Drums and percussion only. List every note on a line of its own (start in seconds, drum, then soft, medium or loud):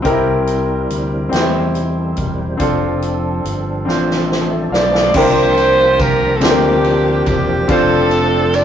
0.05 kick medium
0.05 closed hi-hat medium
0.47 closed hi-hat soft
0.90 closed hi-hat medium
1.33 snare loud
1.33 closed hi-hat medium
1.75 closed hi-hat soft
2.17 kick medium
2.17 closed hi-hat soft
2.60 kick medium
2.60 closed hi-hat medium
3.02 closed hi-hat soft
3.45 closed hi-hat medium
3.89 snare soft
4.11 snare soft
4.32 snare medium
4.74 snare medium
4.95 snare medium
5.14 kick loud
5.14 crash loud
5.57 ride soft
5.57 tambourine medium
5.99 kick loud
5.99 ride medium
5.99 tambourine medium
6.41 snare loud
6.41 ride medium
6.41 tambourine loud
6.84 ride soft
7.26 kick medium
7.26 ride soft
7.26 tambourine medium
7.69 kick loud
7.69 ride medium
8.11 ride soft
8.11 tambourine medium
8.53 ride medium
8.53 tambourine medium